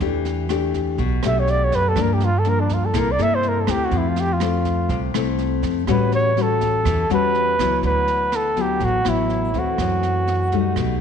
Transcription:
0.00 upright bass E2, nylon-string guitar E3 A3 D4 G4, kick, snare
0.25 snare
0.49 nylon-string guitar A3 D4 G4, cross-stick, snare
0.74 kick, snare
0.98 upright bass B1, nylon-string guitar B2, kick, snare
1.23 upright bass B1, nylon-string guitar A3 D4 G4, flugelhorn E5, cross-stick, snare
1.39 flugelhorn C#5
1.47 flugelhorn D5, snare
1.64 flugelhorn C#5
1.72 upright bass F#2, flugelhorn B4, kick, snare
1.89 flugelhorn A4
1.96 upright bass G2, nylon-string guitar G2 F3 A#3 D4, kick, cross-stick, snare
2.02 flugelhorn A#4
2.13 flugelhorn G4
2.20 snare
2.25 flugelhorn F4
2.39 flugelhorn A4
2.45 nylon-string guitar F3 A#3 D4, snare
2.49 flugelhorn A#4
2.60 flugelhorn D4
2.69 kick, snare
2.73 flugelhorn F4
2.85 flugelhorn A4
2.94 upright bass C2, nylon-string guitar C3 A#3 E4 A4, kick, cross-stick, snare
2.98 flugelhorn A#4
3.11 flugelhorn D5
3.18 upright bass G2, nylon-string guitar A#3 E4 A4, flugelhorn E5, snare
3.34 flugelhorn C5
3.43 snare
3.48 flugelhorn A#4
3.61 flugelhorn A4
3.67 upright bass D2, nylon-string guitar A3 C4 E4, flugelhorn G4, kick, cross-stick, snare
3.85 flugelhorn F#4
3.91 upright bass F2, nylon-string guitar F3, kick, snare
3.98 flugelhorn E4
4.09 flugelhorn F4
4.16 flugelhorn G4, snare
4.33 flugelhorn F4
4.40 nylon-string guitar A3 C4, cross-stick, snare
4.65 kick, snare
4.89 upright bass C2, nylon-string guitar C3, kick, snare
5.14 upright bass C2, nylon-string guitar A3 C4 E4, cross-stick, snare
5.38 snare
5.62 upright bass F2, kick, snare
5.87 upright bass A1, nylon-string guitar A2 G3 C#4 F#4, flugelhorn B4, kick, cross-stick, snare
6.12 flugelhorn C#5, snare
6.36 nylon-string guitar G3 C#4 F#4, snare
6.42 flugelhorn A4
6.61 kick, snare
6.85 upright bass E2, nylon-string guitar E3, kick, cross-stick, snare
7.10 upright bass E2, nylon-string guitar G3 C#4 F#4, flugelhorn B4, snare
7.35 snare
7.59 upright bass C#2, nylon-string guitar F#3 B3 E4, kick, cross-stick, snare
7.83 upright bass D2, nylon-string guitar D3, flugelhorn B4, kick, snare
8.07 snare
8.32 flugelhorn A4, cross-stick, snare
8.56 nylon-string guitar F#3 B3 E4, kick, snare
8.61 flugelhorn G4
8.80 upright bass A1, nylon-string guitar A2, kick, snare
8.84 flugelhorn F#4
9.05 upright bass A1, nylon-string guitar F#3 B3 E4, flugelhorn E4, cross-stick, snare
9.29 snare
9.54 upright bass D2, nylon-string guitar E3 A3 C4, kick, snare
9.59 flugelhorn F#4
9.78 upright bass F#2, nylon-string guitar F#2, kick, cross-stick, snare
10.03 snare
10.27 snare
10.52 nylon-string guitar G3 A3 D#4, kick, snare
10.76 upright bass B1, nylon-string guitar B2, kick, cross-stick, snare

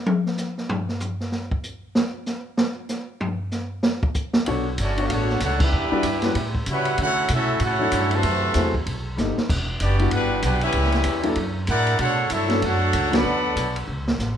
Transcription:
0.06 high tom
0.26 snare
0.37 snare, hi-hat pedal
0.58 snare
0.69 floor tom
0.89 snare
1.00 floor tom, hi-hat pedal
1.20 snare
1.32 snare
1.51 kick
1.63 hi-hat pedal
1.95 snare
2.26 snare, hi-hat pedal
2.57 snare
2.89 snare, hi-hat pedal
3.21 floor tom
3.51 snare, hi-hat pedal
3.83 snare
4.03 kick
4.14 kick, hi-hat pedal
4.33 snare
4.46 upright bass B1, grand piano B3 D4 F#4 A4 C#5, ride
4.78 upright bass G1, trombone section F#3 A3 D4, trumpet section A3 C#4 F#4 D5, hi-hat pedal, ride
4.98 grand piano B3 D4 F#4 A4 C#5, ride
5.06 upright bass A1, trumpet section F5, ride
5.10 trombone section A3 D4 F#4, trumpet section D4 A4 C#5 F#5
5.30 snare
5.40 upright bass C#2, trombone section A3 D4 F#4, trumpet section D4 A4 C#5 F#5, hi-hat pedal, ride
5.60 trombone section G3 B3 E4, trumpet section D4 G4 B4 E5, kick, crash
5.72 upright bass E2
5.92 grand piano G3 D4 E4 F#4 B4, muted upright bass stroke
6.03 upright bass G2, hi-hat pedal, ride
6.22 grand piano G3 C#4 E4 F#4 B4, snare, ride
6.35 upright bass A2, ride
6.55 kick
6.66 upright bass C#3, trombone section G3 C#4 F#4, hi-hat pedal, ride
6.71 trumpet section E4 B4 C#5 F#5
6.85 ride
6.98 upright bass D3, trombone section A3 C#4 F#4, ride
7.03 trumpet section E4 A4 C#5 F#5
7.28 upright bass B2, trombone section A3 C#4, hi-hat pedal, ride
7.33 trumpet section C#4 F#4 A4 E5, trombone section E4
7.60 upright bass A2, trombone section F#4, ride
7.64 trombone section A3 C#4, trumpet section E4 A4 C#5 F#5
7.79 grand piano F#3 C#4 D4 E4 A4
7.92 upright bass G2, hi-hat pedal, ride
8.11 trombone section C3 E3 A3, ride
8.15 trumpet section F#4 C5 E5 A5
8.23 upright bass F#2, ride
8.54 upright bass E2, grand piano F#3 A3 C4 E4 G#4, snare, hi-hat pedal, ride
8.74 kick
8.86 upright bass B1, ride
9.17 upright bass G1, grand piano G3 A3 B3 D#4 G4, snare, hi-hat pedal
9.37 muted upright bass stroke, snare
9.49 upright bass E1, kick, crash
9.80 upright bass F#1, trombone section G3 B3 D4, trumpet section B3 F#4 G4 D5, hi-hat pedal, ride
9.98 grand piano G3 B3 D4 E4 F#4, ride
10.11 upright bass G1, trombone section B3 D4 G4, trumpet section D4 G4 B4 F#5, ride
10.42 upright bass B1, trombone section B3 D4 F#4, trumpet section D4 G4 B4 F#5, hi-hat pedal, ride
10.61 trombone section G3 B3 E4, trumpet section C#4 G4 B4 E5, ride
10.72 upright bass C#2, ride
10.84 snare
10.92 snare, ride
11.04 upright bass E2, hi-hat pedal, ride
11.23 grand piano F#3 A#3 D4 E4 A4, ride
11.35 upright bass F#2, ride
11.67 upright bass A2, trombone section D4 F#4 A#4, trumpet section E4 A#4 D5 F#5, hi-hat pedal, ride
11.87 ride
11.99 upright bass B2, trombone section A3 D4 F#4, trumpet section D4 A4 C#5 F#5, ride
12.30 upright bass G2, trombone section F#3 A3 E4, trumpet section D4 A4 C#5 E5, hi-hat pedal, ride
12.48 grand piano F#3 B3 C#4 D4 A4, snare, ride
12.61 upright bass F#2, trombone section A3 D4 F#4, trumpet section D4 A4 C#5 F#5, ride
12.93 upright bass C#2, hi-hat pedal, ride
13.11 trombone section D3 F#3 B3, grand piano F#3 B3 C#4 D4 F#4, snare, ride
13.15 trumpet section A4 D5 F#5 B5
13.24 upright bass D2
13.56 upright bass B1, hi-hat pedal, ride
13.76 ride
13.88 upright bass C#2
14.08 snare
14.19 upright bass A1, snare, hi-hat pedal

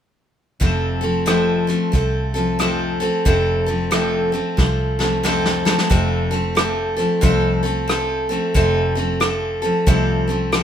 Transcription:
0.60 fingered electric bass F1, steel-string acoustic guitar F2 C3 F3 A3 C4 A4, kick, closed hi-hat
1.01 steel-string acoustic guitar F3 A3 C4 A4
1.26 steel-string acoustic guitar F2 C3 F3 A3 C4 A4, cross-stick, closed hi-hat
1.67 steel-string acoustic guitar F3 A3 C4 A4, closed hi-hat
1.92 fingered electric bass C2, steel-string acoustic guitar F3 A3 C4 A4, kick, closed hi-hat
2.34 steel-string acoustic guitar F3 A3 C4 A4, closed hi-hat
2.59 steel-string acoustic guitar F2 C3 F3 A3 C4 A4, cross-stick, closed hi-hat
3.00 steel-string acoustic guitar F3 A3 C4 A4, closed hi-hat
3.25 fingered electric bass F1, steel-string acoustic guitar F2 C3 F3 A3 C4 A4, kick, closed hi-hat
3.66 steel-string acoustic guitar F3 A3 C4 A4
3.91 steel-string acoustic guitar F2 C3 F3 A3 C4 A4, cross-stick, closed hi-hat
4.32 steel-string acoustic guitar F3 A3 C4 A4, closed hi-hat
4.57 fingered electric bass C2, steel-string acoustic guitar F3 A3 C4 A4, kick, snare
4.99 steel-string acoustic guitar F3 A3 C4 A4, snare
5.23 steel-string acoustic guitar F2 C3 F3 A3 C4 A4, snare
5.45 snare
5.65 steel-string acoustic guitar F3 A3 C4 A4, snare
5.79 snare
5.90 fingered electric bass F1, steel-string acoustic guitar F2 C3 F3 A3 C4 A4, kick, closed hi-hat
6.31 steel-string acoustic guitar F3 A3 C4 A4, closed hi-hat
6.55 steel-string acoustic guitar F3 A3 C4 A4, cross-stick, closed hi-hat
6.97 steel-string acoustic guitar F3 A3 C4 A4, closed hi-hat
7.21 fingered electric bass C2, steel-string acoustic guitar F2 C3 F3 A3 C4 A4, kick, closed hi-hat
7.63 steel-string acoustic guitar F3 A3 C4 A4, closed hi-hat
7.88 steel-string acoustic guitar F3 A3 C4 A4, cross-stick, closed hi-hat
8.29 steel-string acoustic guitar F3 A3 C4 A4, closed hi-hat
8.54 fingered electric bass F1, steel-string acoustic guitar F2 C3 F3 A3 C4 A4, kick, closed hi-hat
8.95 steel-string acoustic guitar F3 A3 C4 A4, closed hi-hat
9.20 steel-string acoustic guitar F3 A3 C4 A4, cross-stick, closed hi-hat
9.62 steel-string acoustic guitar F3 A3 C4 A4, closed hi-hat
9.86 fingered electric bass C2, steel-string acoustic guitar F2 C3 F3 A3 C4 A4, kick, closed hi-hat
10.28 steel-string acoustic guitar F3 A3 C4 A4, closed hi-hat
10.52 steel-string acoustic guitar F3 A3 C4 A4, cross-stick, closed hi-hat

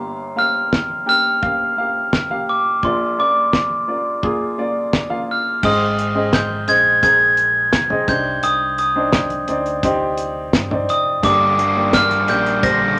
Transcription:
Already playing: upright piano G1 G2 A#3 G4 F5
0.36 upright piano A#3 G4 F5, glockenspiel F6
0.73 kick, snare
1.06 upright piano A#3 G4 G5, glockenspiel F6
1.42 upright piano A#3 G4 F5, kick
1.77 upright piano A#3 G4 F5
2.13 kick, snare
2.30 upright piano A#3 G4 F5
2.49 glockenspiel D6
2.83 upright piano A#1 A#2 A#3 F4 D5, glockenspiel C6, kick
3.18 upright piano A#3 F4 D5, glockenspiel D6
3.53 kick, snare
3.88 upright piano A#3 F4 D5
4.23 upright piano A#3 F4 G#4, kick
4.58 upright piano A#3 F4 D5
4.93 kick, snare
5.10 upright piano A#3 F4 F5
5.31 glockenspiel F6
5.63 fingered electric bass G#1, upright piano G#2 C4 G#4 D#5, glockenspiel D#6, kick, crash
5.99 closed hi-hat
6.15 upright piano C4 G#4 D#5
6.33 glockenspiel G6, kick, snare, closed hi-hat
6.68 fingered electric bass A#1, upright piano C4 G#4 D#5, glockenspiel G#6, closed hi-hat
7.03 upright piano C4 G#4 A#4, glockenspiel G#6, kick, closed hi-hat
7.37 closed hi-hat
7.73 fingered electric bass C2, kick, snare, closed hi-hat
7.90 upright piano C4 G#4 D#5, floor tom
8.08 fingered electric bass C2, upright piano C3 C4 D4 D#4, glockenspiel G6, kick, closed hi-hat
8.43 fingered electric bass C2, glockenspiel D#6, closed hi-hat
8.78 glockenspiel D#6, closed hi-hat
8.95 upright piano C4 D4 D#4
9.12 kick, snare, closed hi-hat
9.30 closed hi-hat
9.47 fingered electric bass D2, upright piano C4 D#4 D5, closed hi-hat
9.66 closed hi-hat
9.83 upright piano C4 D#4 G4, kick, closed hi-hat
10.18 closed hi-hat
10.53 fingered electric bass G2, kick, snare, closed hi-hat
10.71 upright piano C4 D#4 D5, floor tom
10.88 fingered electric bass F1, glockenspiel D#6, closed hi-hat
11.23 fingered electric bass G1, overdriven electric guitar G2 D3 G3 A#3 D4 A#4, upright piano G2 A#3 G4 D5, glockenspiel D6, kick, closed hi-hat
11.57 overdriven electric guitar G3 A#3 D4 A#4, closed hi-hat
11.75 upright piano A#3 G4 D5
11.93 overdriven electric guitar G3 A#3 D4 A#4, glockenspiel F6, kick, snare, closed hi-hat
12.11 closed hi-hat
12.28 fingered electric bass A#1, overdriven electric guitar G3 A#3 D4 A#4, upright piano A#3 G4 D5, glockenspiel G6, closed hi-hat
12.46 closed hi-hat
12.62 overdriven electric guitar G2 D3 G3 A#3 D4 A#4, upright piano A#3 G4 C5, glockenspiel A#6, kick, closed hi-hat

